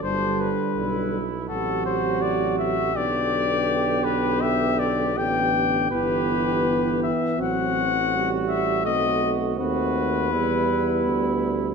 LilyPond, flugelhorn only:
\new Staff \with { instrumentName = "Flugelhorn" } { \time 4/4 \key g \major \tempo 4 = 82 d'8 r8 e'4 fis'2 | g'2. g'4 | \key e \minor g'4. r8 fis'2 | fis'4 fis'4 e'2 | }